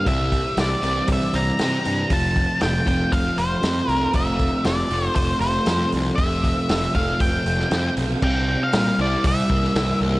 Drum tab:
CC |----------------|----------------|----------------|----------------|
HH |o-o-o-o-o-o-o-o-|o-o-o-o-o-o-o-o-|o-o-o-o-o-o-o-o-|o-o-o-o-o-o-o-o-|
SD |----o-------o---|----o-------o---|----o-------o---|----o------oo---|
BD |o-o-----o-------|o-o---o-o-------|o-o-----o-------|o-o---o-o-------|

CC |x---------------|
HH |----o---o---o---|
SD |----o------oo---|
BD |o-------o-o-----|